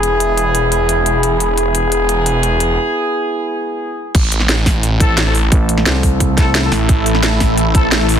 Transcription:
Already playing: E1 B3 E4 G#4 E5 B5
0.03 closed hi-hat
0.20 closed hi-hat
0.38 closed hi-hat
0.55 closed hi-hat
0.72 closed hi-hat
0.89 closed hi-hat
1.06 closed hi-hat
1.23 closed hi-hat
1.40 B3 E4 G#4, closed hi-hat
1.58 closed hi-hat
1.75 closed hi-hat
1.92 closed hi-hat
2.09 closed hi-hat
2.26 closed hi-hat
2.43 closed hi-hat
2.60 closed hi-hat
4.15 A1 A3 E4 A4, kick, closed hi-hat, crash
4.32 closed hi-hat
4.40 snare
4.49 snare, closed hi-hat
4.66 kick, snare, open hi-hat
4.83 closed hi-hat
5.00 C4 E4 A4, kick, closed hi-hat
5.18 snare, closed hi-hat
5.26 C4 E4 A4
5.35 open hi-hat
5.52 A1, kick, closed hi-hat
5.69 closed hi-hat
5.78 snare
5.86 C2, snare, closed hi-hat
6.03 kick, open hi-hat
6.20 kick, closed hi-hat
6.38 C4 E4 A4, kick, snare, closed hi-hat
6.55 snare, closed hi-hat
6.63 C4 E4 A4
6.72 A1, snare, open hi-hat
6.89 A1, kick, closed hi-hat
7.06 closed hi-hat
7.15 snare
7.23 snare, closed hi-hat
7.40 kick, snare, open hi-hat
7.58 closed hi-hat
7.75 C4 E4 A4, kick, closed hi-hat
7.92 snare, closed hi-hat
8.00 C4 E4 A4
8.09 open hi-hat

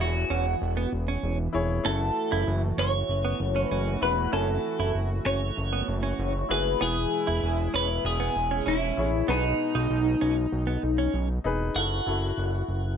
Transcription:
Already playing: E3 B3 E4 G#4 C#5 G#5
0.00 E1 F#4
0.30 E1 C#4
0.62 E1
0.77 B3
0.93 E1
1.08 C#4
1.23 E1
1.53 E1 E4 G#4 C#5
1.83 F#1 A3 C#4 E4 F#4 A4
2.32 F#1 E4
2.47 F#1
2.78 F#1 C#4 C#5
3.09 F#1
3.25 B3
3.40 F#1
3.56 C#4
3.66 B4
3.71 F#1 C#4
4.01 E1 E4 F#4 B4
4.32 F#1 C#4 E4 F#4 A4 G#5
4.79 F#1 E4
4.95 F#1
5.26 F#1 C#4 C#5
5.57 F#1
5.73 B3
5.88 F#1
6.03 C#4
6.19 F#1
6.49 F#1 E4 F#4 G#4 B4
6.80 E1 B2 E3 G#3 B3 E4 G#4 B4
7.27 E1 E4
7.43 E1
7.74 E1 C#4 B4
8.05 E1 G#4
8.20 B3
8.36 E1
8.51 C#4
8.66 E1 C#4 E4
8.97 A1 E4 G#4 C#5
9.28 B1 B2 B3 D#4 G#4 B4
9.75 B1 D#4
9.91 B1
10.21 B1 C#4
10.53 B1
10.67 B3
10.83 B1
10.98 C#4
11.14 B1
11.44 E1 D#4 G#4 B4
11.75 F#1 E4 F#4 A4
12.06 F#1 E4 F#4 A4
12.38 F#1
12.69 F#1

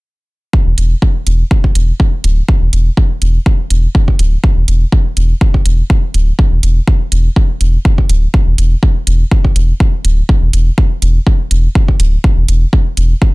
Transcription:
0.53 kick
0.66 E1
0.78 E1, closed hi-hat
1.02 kick
1.27 E1, closed hi-hat
1.51 kick
1.64 kick
1.75 E1, closed hi-hat
2.00 kick
2.24 D1, closed hi-hat
2.49 kick
2.62 E1
2.73 E1, closed hi-hat
2.97 kick
3.22 E1, closed hi-hat
3.46 kick
3.70 E1, closed hi-hat
3.95 kick
4.08 kick
4.19 D1, closed hi-hat
4.44 kick
4.57 E1
4.68 E1, closed hi-hat
4.92 kick
5.17 E1, closed hi-hat
5.41 kick
5.54 kick
5.66 E1, closed hi-hat
5.90 kick
6.14 D1, closed hi-hat
6.39 kick
6.52 E1
6.63 E1, closed hi-hat
6.88 kick
7.12 E1, closed hi-hat
7.36 kick
7.61 E1, closed hi-hat
7.85 kick
7.98 kick
8.09 D1, closed hi-hat
8.34 kick
8.47 E1
8.58 E1, closed hi-hat
8.83 kick
9.07 E1, closed hi-hat
9.31 kick
9.45 kick
9.56 E1, closed hi-hat
9.80 kick
10.05 D1, closed hi-hat
10.29 kick
10.42 E1
10.53 E1, closed hi-hat
10.78 kick
11.02 E1, closed hi-hat
11.27 kick
11.51 E1, closed hi-hat
11.75 kick
11.88 kick
12.00 D1, closed hi-hat
12.24 kick
12.37 E1
12.48 E1, closed hi-hat
12.73 kick
12.97 E1, closed hi-hat
13.22 kick

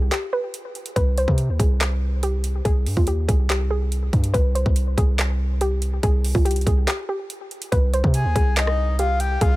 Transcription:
Already playing: C2
0.11 G4, snare, clap, closed hi-hat
0.33 B4
0.54 closed hi-hat
0.75 closed hi-hat
0.86 closed hi-hat
0.96 C2 B4, kick, closed hi-hat
1.18 C5, closed hi-hat
1.28 C3, kick
1.38 closed hi-hat
1.49 D#2
1.60 C2 G#4, kick, closed hi-hat
1.81 snare, clap, closed hi-hat
2.23 G4, closed hi-hat
2.44 closed hi-hat
2.65 C2 G#4, kick, closed hi-hat
2.86 G2, open hi-hat
2.97 D#2 F4, kick
3.07 G4, closed hi-hat
3.28 C2 G#4, kick, closed hi-hat
3.50 G4, snare, clap, closed hi-hat
3.70 G#4
3.92 closed hi-hat
4.13 G2, kick, closed hi-hat
4.24 closed hi-hat
4.34 C2 B4, kick, closed hi-hat
4.55 C5, closed hi-hat
4.66 C2, kick
4.76 closed hi-hat
4.98 C2 G#4, kick, closed hi-hat
5.19 snare, clap, closed hi-hat
5.61 G4, closed hi-hat
5.82 closed hi-hat
6.03 C2 G#4, kick, closed hi-hat
6.25 open hi-hat
6.35 C2 F4, kick
6.45 G4, closed hi-hat
6.51 closed hi-hat
6.56 closed hi-hat
6.61 closed hi-hat
6.67 C2 G#4, kick, closed hi-hat
6.87 G4, snare, clap, closed hi-hat
7.09 G4
7.30 closed hi-hat
7.51 closed hi-hat
7.62 closed hi-hat
7.72 C2 B4, kick, closed hi-hat
7.94 C5, closed hi-hat
8.04 C3, kick
8.14 G#5, closed hi-hat
8.25 D#2
8.36 C2 G#4, kick, closed hi-hat
8.56 D#5, snare, clap, closed hi-hat
8.67 cross-stick
8.99 G4 F5, closed hi-hat
9.20 G5, closed hi-hat
9.41 C2 G#4 F5, kick, closed hi-hat

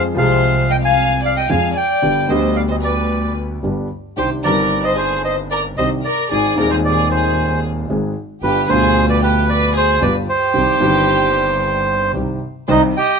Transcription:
Already playing: F2 F3 G#3 C4 G#4
0.14 C2 C3 F3 G#3 C4 C5 F5
0.19 G#4
0.70 D#5 G5
0.82 F5 G#5
1.23 D5 F5
1.36 D#5 G5
1.49 F2 F3 G#3 C4 G#4 F5 G#5
1.75 D5 G5
2.02 G1 G2 D3 G3 B3 G4
2.27 D2 D3 G3 B3 C5 D#5
2.31 G4
2.56 D5 F5
2.69 C5 D#5
2.82 B4 D5
3.63 G1 G2 D3 G3 B3 G4
4.16 C2 C3 D#3 C4 D4 G4 C5
4.43 G1 G2 D#3 C4 D4 G4 A#4 D5
4.84 C5 D#5
4.97 G#4 C5
5.24 C5 D#5
5.50 A#4 D5
5.77 C2 C3 D#3 C4 D4 G4 C5 D#5
6.04 A#4 D5
6.31 G#1 G#2 D#3 G#3 C4 G#4 D5
6.55 D#1 D#2 D#3 G#3 C4 A#4 D5
6.60 G#4
6.70 G#4 C5
6.85 G#4 D5
7.11 G#4 C5
7.89 G#1 G#2 D#3 G#3 C4 G#4
8.43 G1 G2 D3 G3 B3 F4 G4 B4
8.68 D2 B2 D3 G3 F4 G#4 C5
9.09 B4 D5
9.22 G4 B4
9.48 B4 D5
9.73 G#4 C5
10.01 G1 G2 D3 G3 B3 F4 B4 D5
10.28 G4 C5
10.54 C2 C3 D#3 G3 C4 G4
10.79 G1 G2 D#3 G3 C4 G4
12.14 C2 C3 D#3 G3 C4 G4
12.68 C2 C3 D#3 G3 C4 D#4 G4 C5 D#5
12.95 G4 D#5 G5

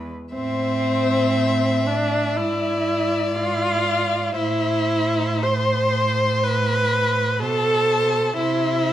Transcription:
Already playing: G#3 B4
0.33 A2 C4 C5 E5
1.87 D4 D5
2.37 G#2 E4 D5 E5
3.35 F4 F5
4.34 A2 E4 C5 E5
5.42 C5 C6
6.43 B4 B5
7.40 B2 A4 C5 A5
8.37 C3 E4 C5 E5

